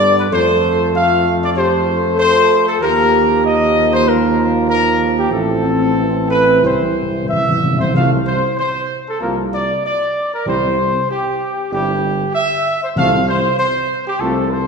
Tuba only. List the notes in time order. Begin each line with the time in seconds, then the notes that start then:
Already playing: G2
0.31 F2
2.81 D#2
5.31 A1
6.63 C2
7.95 C2
9.21 C2
10.47 C2
11.71 G1
12.96 C2
14.20 C2